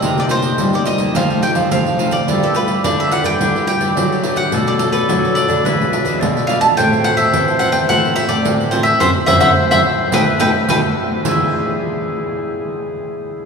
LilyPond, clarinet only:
\new Staff \with { instrumentName = "Clarinet" } { \time 4/4 \key e \minor \tempo 4 = 107 r1 | a'4 g'2. | a'2 b'4 d''4 | c''2.~ c''8 r8 |
c''2 b'4 g'4 | gis'1 | }